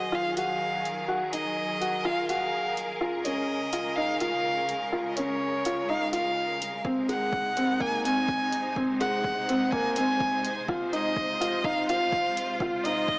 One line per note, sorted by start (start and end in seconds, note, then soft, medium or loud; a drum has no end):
0.00 3.00 D#3 medium
0.00 3.00 F#3 medium
0.00 8.03 G#4 medium
0.00 0.71 C5 medium
0.00 0.16 D#5 medium
0.12 0.33 F4 medium
0.12 0.37 F5 loud
0.37 0.52 D#1 medium
0.37 0.79 F#4 medium
0.37 1.05 F5 medium
0.37 closed hi-hat medium
0.47 7.76 A#4 medium
0.85 1.00 D#1 medium
0.85 closed hi-hat medium
1.08 1.29 F#4 medium
1.33 1.48 D#1 loud
1.33 1.75 D#4 medium
1.33 2.07 D#5 medium
1.33 closed hi-hat medium
1.81 1.96 D#1 medium
1.81 2.02 F#4 medium
1.81 closed hi-hat medium
2.05 2.26 F4 medium
2.05 2.28 F5 loud
2.29 2.44 D#1 medium
2.29 2.71 F#4 medium
2.29 2.97 F5 medium
2.29 closed hi-hat medium
2.76 2.92 D#1 medium
2.76 closed hi-hat medium
3.01 6.85 C#3 medium
3.01 3.22 F4 medium
3.20 13.19 G#3 medium
3.20 3.98 D#5 medium
3.25 3.40 F1 loud
3.25 3.67 C#4 medium
3.25 closed hi-hat medium
3.72 3.88 F1 medium
3.72 3.94 F4 medium
3.72 closed hi-hat medium
3.96 4.18 D#4 medium
3.96 4.20 F5 loud
4.20 4.36 F1 medium
4.20 4.63 F4 medium
4.20 4.88 F5 loud
4.20 closed hi-hat medium
4.68 4.84 F1 medium
4.68 closed hi-hat medium
4.92 5.14 F4 medium
5.09 5.17 D#5 medium
5.15 5.32 F1 medium
5.15 5.59 C#4 medium
5.15 5.90 C#5 medium
5.15 closed hi-hat medium
5.64 5.80 F1 loud
5.64 5.86 F4 medium
5.64 closed hi-hat medium
5.88 6.10 D#4 medium
5.88 6.12 F5 loud
6.13 6.28 F1 medium
6.13 6.55 F4 medium
6.13 6.81 F5 medium
6.13 closed hi-hat medium
6.60 6.76 C2 medium
6.60 closed hi-hat medium
6.85 13.19 C3 medium
6.85 7.06 C4 medium
6.85 kick loud
7.00 11.41 D#4 medium
7.09 7.24 G#1 loud
7.09 7.51 G#3 medium
7.09 7.82 F#5 loud
7.09 closed hi-hat medium
7.33 kick loud
7.56 7.72 G#1 medium
7.56 7.78 C4 medium
7.56 closed hi-hat medium
7.80 8.01 A#3 medium
7.80 8.04 G#5 loud
7.80 kick loud
8.05 8.20 G#1 medium
8.05 8.47 C4 medium
8.05 8.73 G#5 loud
8.05 closed hi-hat medium
8.28 kick loud
8.52 8.68 G#1 medium
8.52 closed hi-hat medium
8.59 13.19 C5 medium
8.76 8.97 C4 medium
8.76 kick medium
9.00 9.16 G#1 loud
9.00 9.43 G#3 medium
9.00 9.73 F#5 medium
9.00 closed hi-hat medium
9.24 kick medium
9.48 9.64 G#1 loud
9.48 9.70 C4 medium
9.48 closed hi-hat medium
9.71 9.94 A#3 medium
9.71 9.95 G#5 loud
9.71 kick loud
9.95 10.12 G#1 medium
9.95 10.39 C4 medium
9.95 10.64 G#5 loud
9.95 closed hi-hat medium
10.20 kick loud
10.44 10.60 G#1 medium
10.44 closed hi-hat medium
10.68 10.90 F4 medium
10.68 kick loud
10.93 11.35 D#4 medium
10.93 11.66 D#5 loud
10.93 closed hi-hat medium
11.16 kick medium
11.25 13.19 F4 medium
11.41 11.62 F4 medium
11.41 closed hi-hat medium
11.64 11.86 D#4 medium
11.64 11.88 F5 loud
11.64 kick loud
11.88 12.04 F1 medium
11.88 12.31 F4 medium
11.88 12.57 F5 loud
11.88 closed hi-hat medium
12.12 kick medium
12.37 closed hi-hat medium
12.60 12.82 F4 medium
12.60 kick loud
12.84 13.19 D#4 medium
12.84 13.19 D#5 loud
12.84 closed hi-hat medium
13.08 kick loud